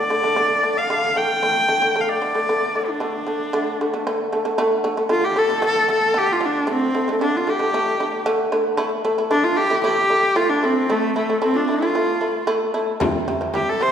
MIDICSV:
0, 0, Header, 1, 4, 480
1, 0, Start_track
1, 0, Key_signature, -1, "minor"
1, 0, Tempo, 526316
1, 349, Time_signature, 4, 2, 24, 8
1, 12693, End_track
2, 0, Start_track
2, 0, Title_t, "Horsehead fiddle"
2, 0, Program_c, 0, 110
2, 0, Note_on_c, 0, 74, 93
2, 710, Note_on_c, 0, 77, 94
2, 724, Note_off_c, 0, 74, 0
2, 1068, Note_on_c, 0, 79, 102
2, 1082, Note_off_c, 0, 77, 0
2, 1830, Note_on_c, 0, 77, 65
2, 1844, Note_off_c, 0, 79, 0
2, 1904, Note_on_c, 0, 74, 90
2, 1918, Note_off_c, 0, 77, 0
2, 2635, Note_on_c, 0, 62, 73
2, 2648, Note_off_c, 0, 74, 0
2, 3723, Note_off_c, 0, 62, 0
2, 4662, Note_on_c, 0, 65, 99
2, 4782, Note_on_c, 0, 67, 96
2, 4795, Note_off_c, 0, 65, 0
2, 4908, Note_on_c, 0, 69, 102
2, 4922, Note_off_c, 0, 67, 0
2, 5147, Note_off_c, 0, 69, 0
2, 5160, Note_on_c, 0, 69, 108
2, 5376, Note_off_c, 0, 69, 0
2, 5394, Note_on_c, 0, 69, 101
2, 5637, Note_on_c, 0, 67, 103
2, 5651, Note_off_c, 0, 69, 0
2, 5767, Note_on_c, 0, 65, 91
2, 5781, Note_off_c, 0, 67, 0
2, 5885, Note_on_c, 0, 62, 90
2, 5899, Note_off_c, 0, 65, 0
2, 6114, Note_off_c, 0, 62, 0
2, 6119, Note_on_c, 0, 60, 97
2, 6556, Note_off_c, 0, 60, 0
2, 6582, Note_on_c, 0, 62, 94
2, 6718, Note_on_c, 0, 65, 85
2, 6732, Note_off_c, 0, 62, 0
2, 6837, Note_on_c, 0, 67, 97
2, 6850, Note_off_c, 0, 65, 0
2, 7546, Note_off_c, 0, 67, 0
2, 8493, Note_on_c, 0, 62, 101
2, 8608, Note_on_c, 0, 65, 100
2, 8622, Note_off_c, 0, 62, 0
2, 8723, Note_on_c, 0, 67, 108
2, 8736, Note_off_c, 0, 65, 0
2, 8969, Note_off_c, 0, 67, 0
2, 8975, Note_on_c, 0, 67, 108
2, 9451, Note_on_c, 0, 65, 100
2, 9464, Note_off_c, 0, 67, 0
2, 9566, Note_on_c, 0, 62, 91
2, 9580, Note_off_c, 0, 65, 0
2, 9707, Note_on_c, 0, 60, 93
2, 9721, Note_off_c, 0, 62, 0
2, 9950, Note_on_c, 0, 57, 96
2, 9964, Note_off_c, 0, 60, 0
2, 10180, Note_off_c, 0, 57, 0
2, 10185, Note_on_c, 0, 57, 79
2, 10405, Note_off_c, 0, 57, 0
2, 10433, Note_on_c, 0, 60, 89
2, 10518, Note_on_c, 0, 65, 66
2, 10532, Note_off_c, 0, 60, 0
2, 10545, Note_on_c, 0, 62, 84
2, 10559, Note_off_c, 0, 65, 0
2, 10675, Note_on_c, 0, 65, 91
2, 10689, Note_off_c, 0, 62, 0
2, 11390, Note_off_c, 0, 65, 0
2, 12354, Note_on_c, 0, 67, 89
2, 12488, Note_on_c, 0, 69, 92
2, 12502, Note_off_c, 0, 67, 0
2, 12606, Note_on_c, 0, 72, 102
2, 12620, Note_off_c, 0, 69, 0
2, 12693, Note_off_c, 0, 72, 0
2, 12693, End_track
3, 0, Start_track
3, 0, Title_t, "Shamisen"
3, 0, Program_c, 1, 106
3, 93, Note_on_c, 1, 50, 72
3, 99, Note_on_c, 1, 57, 76
3, 197, Note_off_c, 1, 50, 0
3, 200, Note_off_c, 1, 57, 0
3, 212, Note_on_c, 1, 50, 70
3, 218, Note_on_c, 1, 57, 75
3, 317, Note_off_c, 1, 50, 0
3, 320, Note_off_c, 1, 57, 0
3, 331, Note_on_c, 1, 50, 95
3, 337, Note_on_c, 1, 57, 81
3, 532, Note_off_c, 1, 50, 0
3, 533, Note_off_c, 1, 57, 0
3, 575, Note_on_c, 1, 50, 66
3, 581, Note_on_c, 1, 57, 61
3, 775, Note_off_c, 1, 50, 0
3, 775, Note_off_c, 1, 57, 0
3, 820, Note_on_c, 1, 50, 89
3, 823, Note_on_c, 1, 57, 86
3, 1017, Note_off_c, 1, 50, 0
3, 1017, Note_off_c, 1, 57, 0
3, 1058, Note_on_c, 1, 50, 63
3, 1067, Note_on_c, 1, 57, 57
3, 1257, Note_off_c, 1, 50, 0
3, 1258, Note_off_c, 1, 57, 0
3, 1300, Note_on_c, 1, 50, 85
3, 1303, Note_on_c, 1, 57, 86
3, 1497, Note_off_c, 1, 50, 0
3, 1497, Note_off_c, 1, 57, 0
3, 1536, Note_on_c, 1, 50, 69
3, 1540, Note_on_c, 1, 57, 73
3, 1639, Note_off_c, 1, 50, 0
3, 1641, Note_off_c, 1, 57, 0
3, 1657, Note_on_c, 1, 50, 70
3, 1661, Note_on_c, 1, 57, 72
3, 1760, Note_off_c, 1, 50, 0
3, 1760, Note_off_c, 1, 57, 0
3, 1784, Note_on_c, 1, 50, 84
3, 1790, Note_on_c, 1, 57, 82
3, 1979, Note_off_c, 1, 50, 0
3, 1981, Note_off_c, 1, 57, 0
3, 2021, Note_on_c, 1, 50, 65
3, 2025, Note_on_c, 1, 57, 65
3, 2121, Note_off_c, 1, 57, 0
3, 2122, Note_off_c, 1, 50, 0
3, 2139, Note_on_c, 1, 50, 67
3, 2145, Note_on_c, 1, 57, 75
3, 2241, Note_off_c, 1, 50, 0
3, 2242, Note_off_c, 1, 57, 0
3, 2271, Note_on_c, 1, 50, 83
3, 2275, Note_on_c, 1, 57, 82
3, 2463, Note_off_c, 1, 57, 0
3, 2464, Note_off_c, 1, 50, 0
3, 2509, Note_on_c, 1, 50, 63
3, 2515, Note_on_c, 1, 57, 63
3, 2702, Note_off_c, 1, 50, 0
3, 2703, Note_off_c, 1, 57, 0
3, 2738, Note_on_c, 1, 50, 75
3, 2745, Note_on_c, 1, 57, 81
3, 2936, Note_off_c, 1, 50, 0
3, 2937, Note_off_c, 1, 57, 0
3, 2978, Note_on_c, 1, 50, 64
3, 2987, Note_on_c, 1, 57, 61
3, 3177, Note_off_c, 1, 50, 0
3, 3178, Note_off_c, 1, 57, 0
3, 3221, Note_on_c, 1, 50, 95
3, 3227, Note_on_c, 1, 57, 97
3, 3417, Note_off_c, 1, 50, 0
3, 3420, Note_off_c, 1, 57, 0
3, 3475, Note_on_c, 1, 50, 82
3, 3477, Note_on_c, 1, 57, 74
3, 3567, Note_off_c, 1, 57, 0
3, 3569, Note_off_c, 1, 50, 0
3, 3589, Note_on_c, 1, 50, 75
3, 3594, Note_on_c, 1, 57, 62
3, 3685, Note_off_c, 1, 50, 0
3, 3686, Note_off_c, 1, 57, 0
3, 3710, Note_on_c, 1, 50, 105
3, 3713, Note_on_c, 1, 57, 95
3, 3901, Note_off_c, 1, 50, 0
3, 3902, Note_off_c, 1, 57, 0
3, 3944, Note_on_c, 1, 50, 75
3, 3948, Note_on_c, 1, 57, 82
3, 4042, Note_off_c, 1, 50, 0
3, 4044, Note_off_c, 1, 57, 0
3, 4059, Note_on_c, 1, 50, 81
3, 4063, Note_on_c, 1, 57, 77
3, 4160, Note_off_c, 1, 50, 0
3, 4160, Note_off_c, 1, 57, 0
3, 4177, Note_on_c, 1, 50, 101
3, 4180, Note_on_c, 1, 57, 113
3, 4375, Note_off_c, 1, 50, 0
3, 4375, Note_off_c, 1, 57, 0
3, 4414, Note_on_c, 1, 50, 89
3, 4419, Note_on_c, 1, 57, 98
3, 4517, Note_off_c, 1, 50, 0
3, 4519, Note_off_c, 1, 57, 0
3, 4535, Note_on_c, 1, 50, 73
3, 4539, Note_on_c, 1, 57, 77
3, 4635, Note_off_c, 1, 50, 0
3, 4636, Note_off_c, 1, 57, 0
3, 4644, Note_on_c, 1, 50, 94
3, 4649, Note_on_c, 1, 57, 90
3, 4848, Note_off_c, 1, 50, 0
3, 4848, Note_off_c, 1, 57, 0
3, 4888, Note_on_c, 1, 50, 73
3, 4895, Note_on_c, 1, 57, 73
3, 4993, Note_off_c, 1, 50, 0
3, 4996, Note_off_c, 1, 57, 0
3, 5005, Note_on_c, 1, 50, 69
3, 5013, Note_on_c, 1, 57, 71
3, 5113, Note_off_c, 1, 50, 0
3, 5114, Note_off_c, 1, 57, 0
3, 5125, Note_on_c, 1, 50, 88
3, 5131, Note_on_c, 1, 57, 93
3, 5328, Note_off_c, 1, 50, 0
3, 5328, Note_off_c, 1, 57, 0
3, 5366, Note_on_c, 1, 50, 73
3, 5371, Note_on_c, 1, 57, 75
3, 5568, Note_off_c, 1, 50, 0
3, 5568, Note_off_c, 1, 57, 0
3, 5601, Note_on_c, 1, 50, 97
3, 5602, Note_on_c, 1, 57, 92
3, 5803, Note_off_c, 1, 57, 0
3, 5805, Note_off_c, 1, 50, 0
3, 5841, Note_on_c, 1, 50, 71
3, 5844, Note_on_c, 1, 57, 70
3, 6044, Note_off_c, 1, 57, 0
3, 6045, Note_off_c, 1, 50, 0
3, 6083, Note_on_c, 1, 50, 97
3, 6090, Note_on_c, 1, 57, 93
3, 6285, Note_off_c, 1, 50, 0
3, 6286, Note_off_c, 1, 57, 0
3, 6335, Note_on_c, 1, 50, 73
3, 6337, Note_on_c, 1, 57, 69
3, 6433, Note_off_c, 1, 57, 0
3, 6435, Note_off_c, 1, 50, 0
3, 6457, Note_on_c, 1, 50, 76
3, 6466, Note_on_c, 1, 57, 79
3, 6555, Note_off_c, 1, 50, 0
3, 6557, Note_off_c, 1, 57, 0
3, 6577, Note_on_c, 1, 50, 96
3, 6584, Note_on_c, 1, 57, 93
3, 6772, Note_off_c, 1, 50, 0
3, 6772, Note_off_c, 1, 57, 0
3, 6813, Note_on_c, 1, 50, 69
3, 6819, Note_on_c, 1, 57, 74
3, 6913, Note_off_c, 1, 50, 0
3, 6914, Note_off_c, 1, 57, 0
3, 6925, Note_on_c, 1, 50, 78
3, 6933, Note_on_c, 1, 57, 70
3, 7030, Note_off_c, 1, 50, 0
3, 7031, Note_off_c, 1, 57, 0
3, 7058, Note_on_c, 1, 50, 89
3, 7061, Note_on_c, 1, 57, 94
3, 7250, Note_off_c, 1, 57, 0
3, 7251, Note_off_c, 1, 50, 0
3, 7298, Note_on_c, 1, 50, 75
3, 7302, Note_on_c, 1, 57, 78
3, 7490, Note_off_c, 1, 50, 0
3, 7492, Note_off_c, 1, 57, 0
3, 7532, Note_on_c, 1, 50, 119
3, 7533, Note_on_c, 1, 57, 116
3, 7726, Note_off_c, 1, 57, 0
3, 7727, Note_off_c, 1, 50, 0
3, 7771, Note_on_c, 1, 50, 98
3, 7773, Note_on_c, 1, 57, 91
3, 7966, Note_off_c, 1, 50, 0
3, 7966, Note_off_c, 1, 57, 0
3, 8002, Note_on_c, 1, 57, 123
3, 8008, Note_on_c, 1, 64, 116
3, 8202, Note_off_c, 1, 57, 0
3, 8203, Note_off_c, 1, 64, 0
3, 8249, Note_on_c, 1, 57, 91
3, 8254, Note_on_c, 1, 64, 99
3, 8349, Note_off_c, 1, 57, 0
3, 8351, Note_off_c, 1, 64, 0
3, 8373, Note_on_c, 1, 57, 79
3, 8377, Note_on_c, 1, 64, 72
3, 8471, Note_off_c, 1, 57, 0
3, 8471, Note_off_c, 1, 64, 0
3, 8487, Note_on_c, 1, 57, 94
3, 8491, Note_on_c, 1, 64, 99
3, 8683, Note_off_c, 1, 57, 0
3, 8686, Note_off_c, 1, 64, 0
3, 8725, Note_on_c, 1, 57, 72
3, 8729, Note_on_c, 1, 64, 74
3, 8827, Note_off_c, 1, 57, 0
3, 8827, Note_off_c, 1, 64, 0
3, 8848, Note_on_c, 1, 57, 77
3, 8856, Note_on_c, 1, 64, 70
3, 8949, Note_off_c, 1, 57, 0
3, 8950, Note_off_c, 1, 64, 0
3, 8972, Note_on_c, 1, 57, 98
3, 8977, Note_on_c, 1, 64, 104
3, 9166, Note_off_c, 1, 57, 0
3, 9169, Note_off_c, 1, 64, 0
3, 9210, Note_on_c, 1, 57, 71
3, 9215, Note_on_c, 1, 64, 80
3, 9405, Note_off_c, 1, 57, 0
3, 9407, Note_off_c, 1, 64, 0
3, 9448, Note_on_c, 1, 57, 106
3, 9454, Note_on_c, 1, 64, 90
3, 9645, Note_off_c, 1, 57, 0
3, 9646, Note_off_c, 1, 64, 0
3, 9694, Note_on_c, 1, 57, 74
3, 9700, Note_on_c, 1, 64, 70
3, 9888, Note_off_c, 1, 57, 0
3, 9889, Note_off_c, 1, 64, 0
3, 9936, Note_on_c, 1, 57, 94
3, 9941, Note_on_c, 1, 64, 89
3, 10129, Note_off_c, 1, 57, 0
3, 10130, Note_off_c, 1, 64, 0
3, 10175, Note_on_c, 1, 57, 75
3, 10179, Note_on_c, 1, 64, 81
3, 10272, Note_off_c, 1, 57, 0
3, 10274, Note_off_c, 1, 64, 0
3, 10302, Note_on_c, 1, 57, 72
3, 10307, Note_on_c, 1, 64, 64
3, 10396, Note_off_c, 1, 57, 0
3, 10397, Note_off_c, 1, 64, 0
3, 10411, Note_on_c, 1, 57, 92
3, 10415, Note_on_c, 1, 64, 88
3, 10607, Note_off_c, 1, 64, 0
3, 10608, Note_off_c, 1, 57, 0
3, 10649, Note_on_c, 1, 57, 65
3, 10657, Note_on_c, 1, 64, 74
3, 10751, Note_off_c, 1, 57, 0
3, 10753, Note_off_c, 1, 64, 0
3, 10782, Note_on_c, 1, 57, 72
3, 10784, Note_on_c, 1, 64, 75
3, 10877, Note_off_c, 1, 64, 0
3, 10878, Note_off_c, 1, 57, 0
3, 10899, Note_on_c, 1, 57, 87
3, 10902, Note_on_c, 1, 64, 77
3, 11092, Note_off_c, 1, 57, 0
3, 11092, Note_off_c, 1, 64, 0
3, 11133, Note_on_c, 1, 57, 73
3, 11138, Note_on_c, 1, 64, 73
3, 11330, Note_off_c, 1, 64, 0
3, 11331, Note_off_c, 1, 57, 0
3, 11373, Note_on_c, 1, 57, 120
3, 11376, Note_on_c, 1, 64, 102
3, 11571, Note_off_c, 1, 57, 0
3, 11571, Note_off_c, 1, 64, 0
3, 11619, Note_on_c, 1, 57, 93
3, 11621, Note_on_c, 1, 64, 86
3, 11814, Note_off_c, 1, 64, 0
3, 11815, Note_off_c, 1, 57, 0
3, 11857, Note_on_c, 1, 48, 107
3, 11859, Note_on_c, 1, 55, 117
3, 12054, Note_off_c, 1, 55, 0
3, 12055, Note_off_c, 1, 48, 0
3, 12109, Note_on_c, 1, 48, 87
3, 12114, Note_on_c, 1, 55, 89
3, 12205, Note_off_c, 1, 48, 0
3, 12205, Note_off_c, 1, 55, 0
3, 12229, Note_on_c, 1, 48, 69
3, 12236, Note_on_c, 1, 55, 73
3, 12326, Note_off_c, 1, 48, 0
3, 12327, Note_off_c, 1, 55, 0
3, 12348, Note_on_c, 1, 48, 95
3, 12357, Note_on_c, 1, 55, 101
3, 12541, Note_off_c, 1, 48, 0
3, 12546, Note_off_c, 1, 55, 0
3, 12591, Note_on_c, 1, 48, 73
3, 12596, Note_on_c, 1, 55, 80
3, 12687, Note_off_c, 1, 48, 0
3, 12690, Note_off_c, 1, 55, 0
3, 12693, End_track
4, 0, Start_track
4, 0, Title_t, "Frame drum"
4, 11865, Note_on_c, 9, 64, 87
4, 11956, Note_off_c, 9, 64, 0
4, 12109, Note_on_c, 9, 64, 26
4, 12200, Note_off_c, 9, 64, 0
4, 12345, Note_on_c, 9, 64, 59
4, 12436, Note_off_c, 9, 64, 0
4, 12590, Note_on_c, 9, 64, 25
4, 12681, Note_off_c, 9, 64, 0
4, 12693, End_track
0, 0, End_of_file